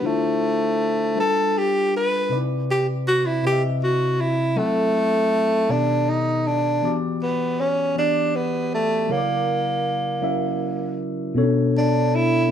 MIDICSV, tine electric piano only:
0, 0, Header, 1, 2, 480
1, 0, Start_track
1, 0, Key_signature, 2, "minor"
1, 0, Tempo, 754717
1, 18, Time_signature, 6, 3, 24, 8
1, 7958, End_track
2, 0, Start_track
2, 0, Title_t, "Tine electric piano"
2, 0, Program_c, 0, 4
2, 0, Control_c, 0, 64, 127
2, 13, Note_on_c, 0, 50, 67
2, 20, Note_on_c, 0, 62, 58
2, 23, Note_on_c, 0, 64, 63
2, 26, Control_c, 0, 64, 0
2, 30, Note_on_c, 0, 65, 67
2, 33, Note_on_c, 0, 72, 77
2, 144, Control_c, 0, 64, 127
2, 575, Note_off_c, 0, 50, 0
2, 579, Note_off_c, 0, 62, 0
2, 580, Note_off_c, 0, 64, 0
2, 583, Note_off_c, 0, 65, 0
2, 585, Note_off_c, 0, 72, 0
2, 734, Note_on_c, 0, 55, 55
2, 740, Note_on_c, 0, 62, 51
2, 745, Note_on_c, 0, 65, 54
2, 746, Control_c, 0, 64, 0
2, 751, Note_on_c, 0, 69, 51
2, 755, Note_on_c, 0, 71, 64
2, 846, Control_c, 0, 64, 127
2, 1295, Note_off_c, 0, 55, 0
2, 1298, Note_off_c, 0, 62, 0
2, 1301, Note_off_c, 0, 65, 0
2, 1304, Note_off_c, 0, 69, 0
2, 1306, Note_off_c, 0, 71, 0
2, 1456, Note_on_c, 0, 48, 68
2, 1460, Note_on_c, 0, 60, 59
2, 1467, Control_c, 0, 64, 0
2, 1467, Note_on_c, 0, 63, 52
2, 1470, Note_on_c, 0, 71, 63
2, 1478, Note_on_c, 0, 74, 75
2, 1504, Note_off_c, 0, 63, 0
2, 1509, Note_on_c, 0, 64, 63
2, 1593, Control_c, 0, 64, 127
2, 2017, Note_off_c, 0, 48, 0
2, 2018, Note_off_c, 0, 60, 0
2, 2023, Note_off_c, 0, 71, 0
2, 2028, Note_off_c, 0, 74, 0
2, 2043, Note_off_c, 0, 64, 0
2, 2177, Note_on_c, 0, 48, 58
2, 2185, Note_on_c, 0, 60, 51
2, 2186, Note_on_c, 0, 64, 51
2, 2195, Note_on_c, 0, 71, 53
2, 2197, Note_on_c, 0, 75, 49
2, 2229, Note_off_c, 0, 75, 0
2, 2239, Note_on_c, 0, 76, 64
2, 2737, Note_off_c, 0, 48, 0
2, 2741, Note_off_c, 0, 60, 0
2, 2742, Note_off_c, 0, 64, 0
2, 2746, Note_off_c, 0, 71, 0
2, 2768, Note_off_c, 0, 76, 0
2, 2897, Note_on_c, 0, 54, 67
2, 2899, Note_on_c, 0, 60, 60
2, 2906, Note_on_c, 0, 64, 66
2, 2907, Control_c, 0, 64, 0
2, 2911, Note_on_c, 0, 69, 66
2, 2917, Note_on_c, 0, 78, 74
2, 3029, Control_c, 0, 64, 127
2, 3457, Note_off_c, 0, 54, 0
2, 3458, Note_off_c, 0, 60, 0
2, 3461, Note_off_c, 0, 64, 0
2, 3464, Note_off_c, 0, 69, 0
2, 3467, Note_off_c, 0, 78, 0
2, 3616, Note_on_c, 0, 47, 53
2, 3621, Note_on_c, 0, 59, 58
2, 3622, Note_on_c, 0, 51, 50
2, 3627, Control_c, 0, 64, 0
2, 3628, Note_on_c, 0, 67, 49
2, 3630, Note_on_c, 0, 69, 57
2, 3632, Note_on_c, 0, 74, 61
2, 3718, Control_c, 0, 64, 127
2, 4176, Note_off_c, 0, 47, 0
2, 4179, Note_off_c, 0, 51, 0
2, 4179, Note_off_c, 0, 59, 0
2, 4182, Note_off_c, 0, 67, 0
2, 4183, Note_off_c, 0, 69, 0
2, 4184, Note_off_c, 0, 74, 0
2, 4337, Note_on_c, 0, 52, 69
2, 4342, Note_on_c, 0, 59, 66
2, 4347, Control_c, 0, 64, 0
2, 4350, Note_on_c, 0, 66, 65
2, 4355, Note_on_c, 0, 67, 63
2, 4358, Note_on_c, 0, 74, 78
2, 4437, Control_c, 0, 64, 127
2, 4897, Note_off_c, 0, 52, 0
2, 4900, Note_off_c, 0, 59, 0
2, 4903, Note_off_c, 0, 66, 0
2, 4906, Note_off_c, 0, 67, 0
2, 4907, Note_off_c, 0, 74, 0
2, 5056, Note_on_c, 0, 52, 57
2, 5061, Note_on_c, 0, 59, 53
2, 5069, Note_on_c, 0, 66, 50
2, 5071, Note_on_c, 0, 67, 54
2, 5079, Note_on_c, 0, 74, 65
2, 5616, Note_off_c, 0, 52, 0
2, 5619, Note_off_c, 0, 59, 0
2, 5623, Note_off_c, 0, 66, 0
2, 5624, Note_off_c, 0, 67, 0
2, 5628, Note_off_c, 0, 74, 0
2, 5772, Note_on_c, 0, 54, 69
2, 5781, Note_on_c, 0, 49, 68
2, 5784, Note_on_c, 0, 64, 58
2, 5785, Note_on_c, 0, 70, 65
2, 5787, Control_c, 0, 64, 0
2, 5794, Note_on_c, 0, 73, 62
2, 5827, Note_off_c, 0, 73, 0
2, 5835, Note_on_c, 0, 74, 81
2, 5913, Control_c, 0, 64, 127
2, 6334, Note_off_c, 0, 54, 0
2, 6339, Note_off_c, 0, 49, 0
2, 6340, Note_off_c, 0, 64, 0
2, 6341, Note_off_c, 0, 70, 0
2, 6366, Note_off_c, 0, 74, 0
2, 6492, Note_on_c, 0, 54, 70
2, 6500, Note_on_c, 0, 61, 61
2, 6503, Note_on_c, 0, 64, 64
2, 6507, Note_on_c, 0, 70, 58
2, 6510, Note_on_c, 0, 76, 78
2, 7055, Note_off_c, 0, 54, 0
2, 7059, Note_off_c, 0, 61, 0
2, 7060, Note_off_c, 0, 64, 0
2, 7062, Note_off_c, 0, 70, 0
2, 7063, Note_off_c, 0, 76, 0
2, 7214, Note_on_c, 0, 47, 89
2, 7223, Note_on_c, 0, 59, 82
2, 7226, Control_c, 0, 64, 0
2, 7226, Note_on_c, 0, 61, 62
2, 7234, Note_on_c, 0, 69, 85
2, 7237, Note_on_c, 0, 73, 96
2, 7263, Note_off_c, 0, 61, 0
2, 7269, Note_on_c, 0, 62, 79
2, 7346, Control_c, 0, 64, 127
2, 7775, Note_off_c, 0, 47, 0
2, 7780, Note_off_c, 0, 59, 0
2, 7785, Note_off_c, 0, 69, 0
2, 7787, Note_off_c, 0, 73, 0
2, 7803, Note_off_c, 0, 62, 0
2, 7958, End_track
0, 0, End_of_file